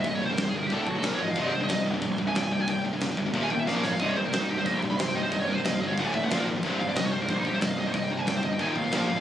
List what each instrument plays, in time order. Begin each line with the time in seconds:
0.04 picked electric bass C1, distorted electric guitar C2 G2, lead electric guitar D#5, kick, crash
0.15 lead electric guitar C#5
0.21 distorted electric guitar C2 G2
0.26 lead electric guitar C5
0.30 distorted electric guitar C2 G2, lead electric guitar A#4
0.37 picked electric bass C1, distorted electric guitar C2 G2, lead electric guitar C5, snare, crash
0.48 lead electric guitar G#4
0.54 picked electric bass G1, distorted electric guitar C2 G2, lead electric guitar A#4
0.63 distorted electric guitar C2 G2, lead electric guitar G4
0.70 picked electric bass D1, distorted electric guitar D2 A2 D3, lead electric guitar A4, kick, crash
0.82 lead electric guitar D4
0.87 picked electric bass B1, distorted electric guitar D2 A2, lead electric guitar F#4, kick
0.95 distorted electric guitar D2 A2, lead electric guitar A4
1.02 picked electric bass A#1, distorted electric guitar A#2 F3 A#3, lead electric guitar A#4, snare, crash
1.15 distorted electric guitar F3, lead electric guitar C#5
1.19 picked electric bass G#1, distorted electric guitar A#2, lead electric guitar D#5
1.27 distorted electric guitar A#2 F3, lead electric guitar F5
1.35 picked electric bass C1, distorted electric guitar C2 G2 C3, lead electric guitar D#5, kick, crash
1.48 lead electric guitar G4
1.53 picked electric bass C1, distorted electric guitar C2 G2, lead electric guitar C5
1.60 distorted electric guitar C2 G2, lead electric guitar D#5
1.68 distorted electric guitar C2 G2, picked electric bass C2, lead electric guitar D#5, snare, crash
1.86 picked electric bass C1, distorted electric guitar C2 G2
1.94 distorted electric guitar C2 G2
2.02 picked electric bass A#1, distorted electric guitar C2 G2, kick, crash
2.18 picked electric bass C1, distorted electric guitar C2 G2, kick
2.27 distorted electric guitar C2 G2, lead electric guitar G#5
2.35 picked electric bass C1, distorted electric guitar C2 G2, lead electric guitar G5, snare, crash
2.43 lead electric guitar G#5
2.52 distorted electric guitar C2 G2, lead electric guitar G5
2.60 distorted electric guitar C2 G2, lead electric guitar G#5
2.68 picked electric bass C1, distorted electric guitar C2 G2, lead electric guitar G5, kick, crash
2.84 distorted electric guitar C2 G2
2.93 distorted electric guitar C2 G2
3.00 picked electric bass C1, distorted electric guitar C2 G2, snare, crash
3.17 picked electric bass G1, distorted electric guitar C2 G2, kick
3.26 distorted electric guitar C2 G2
3.34 picked electric bass D#1, distorted electric guitar D#2 A#2 D#3, kick, crash
3.43 lead electric guitar G#5
3.50 picked electric bass D#1, distorted electric guitar D#2 A#2, lead electric guitar G5, kick
3.59 distorted electric guitar D#2 A#2, lead electric guitar E5
3.67 picked electric bass A#1, distorted electric guitar A#2 F3 A#3, lead electric guitar F5, snare
3.75 lead electric guitar A#4
3.83 picked electric bass G#1, distorted electric guitar A#2 F3, lead electric guitar C#5, snare
3.91 distorted electric guitar A#2 F3, lead electric guitar F5
3.99 picked electric bass C1, distorted electric guitar C2 G2 C3, string section C3 G3 D#4 C5, lead electric guitar D#5, kick, crash
4.08 lead electric guitar C#5
4.16 picked electric bass C1, distorted electric guitar C2 G2, lead electric guitar C5
4.25 distorted electric guitar C2 G2, lead electric guitar A#4
4.32 distorted electric guitar C2 G2, picked electric bass C2, lead electric guitar C5, snare, crash
4.41 lead electric guitar D#4
4.49 picked electric bass C1, distorted electric guitar C2 G2, lead electric guitar G4
4.58 distorted electric guitar C2 G2, lead electric guitar C5
4.65 picked electric bass A#1, distorted electric guitar C2 G2, lead electric guitar D#5, kick, crash
4.73 lead electric guitar G4
4.82 picked electric bass C1, distorted electric guitar C2 G2, kick
4.90 distorted electric guitar C2 G2, lead electric guitar B5
4.98 picked electric bass C1, distorted electric guitar C2 G2, lead electric guitar C6, snare, crash
5.07 lead electric guitar G5
5.15 distorted electric guitar C2 G2, lead electric guitar D#5
5.23 distorted electric guitar C2 G2, lead electric guitar C5
5.31 picked electric bass C1, distorted electric guitar C2 G2, lead electric guitar D#5, kick, crash
5.40 lead electric guitar C#5
5.47 distorted electric guitar C2 G2, lead electric guitar A#4
5.55 distorted electric guitar C2 G2, lead electric guitar C5
5.64 picked electric bass C1, distorted electric guitar C2 G2, lead electric guitar D#5, snare, crash
5.73 lead electric guitar F5
5.82 picked electric bass G1, distorted electric guitar C2 G2, lead electric guitar D#5
5.87 distorted electric guitar G2, lead electric guitar C#5
5.92 distorted electric guitar C2, lead electric guitar F5
5.97 picked electric bass D1, distorted electric guitar D2 A2 D3, string section A2 A3 D4 D5, lead electric guitar F#5, kick, crash
6.06 lead electric guitar G#5
6.14 picked electric bass A1, distorted electric guitar D2 A2, lead electric guitar E5, kick
6.23 distorted electric guitar D2 A2, lead electric guitar F#5
6.30 picked electric bass A#1, string section A#2 F3 F4 A#4, distorted electric guitar A#2 F3 A#3, lead electric guitar F5, snare, crash
6.37 lead electric guitar A#4
6.47 picked electric bass G#1, distorted electric guitar A#2 F3
6.56 distorted electric guitar A#2 F3
6.63 picked electric bass C1, distorted electric guitar C2 G2 C3, string section C3 G3 D#4 C5, kick, crash
6.80 picked electric bass C1, distorted electric guitar C2 G2, lead electric guitar F5
6.88 distorted electric guitar C2 G2, lead electric guitar D5
6.95 picked electric bass C2, distorted electric guitar C2 G2, lead electric guitar D#5, snare, crash
7.05 lead electric guitar C#5
7.12 picked electric bass C1, distorted electric guitar C2 G2, lead electric guitar C5
7.21 distorted electric guitar C2 G2, lead electric guitar A#4
7.28 picked electric bass A#1, distorted electric guitar C2 G2, lead electric guitar C5, kick, crash
7.39 lead electric guitar D#4
7.45 picked electric bass C1, distorted electric guitar C2 G2, lead electric guitar G4, kick
7.54 distorted electric guitar C2 G2, lead electric guitar C5
7.60 picked electric bass C1, distorted electric guitar C2 G2, lead electric guitar D#5, snare, crash
7.70 lead electric guitar F5
7.78 distorted electric guitar C2 G2, lead electric guitar D#5
7.87 distorted electric guitar C2 G2, lead electric guitar C5
7.94 picked electric bass C1, distorted electric guitar C2 G2, lead electric guitar D#5, kick, crash
8.04 lead electric guitar G5
8.10 distorted electric guitar C2 G2, lead electric guitar A#5
8.17 distorted electric guitar C2 G2, lead electric guitar G#5
8.26 picked electric bass C1, distorted electric guitar C2 G2, lead electric guitar G5, snare, crash
8.36 lead electric guitar C5
8.43 picked electric bass G1, distorted electric guitar C2 G2, lead electric guitar D#5, kick
8.51 distorted electric guitar C2 G2, lead electric guitar G5
8.59 picked electric bass D#1, distorted electric guitar D#2 A#2 D#3, string section A#2 D#3 D#4 A#4, lead electric guitar G#5, kick, crash
8.69 lead electric guitar G5
8.75 picked electric bass A1, distorted electric guitar D#2 A#2, lead electric guitar F5, kick
8.84 distorted electric guitar D#2 A#2, lead electric guitar F5
8.91 picked electric bass A#1, distorted electric guitar A#2 F3 A#3, string section A#2 F3 F4, snare, crash
9.09 picked electric bass G#1, distorted electric guitar A#2 F3
9.16 distorted electric guitar A#2 F3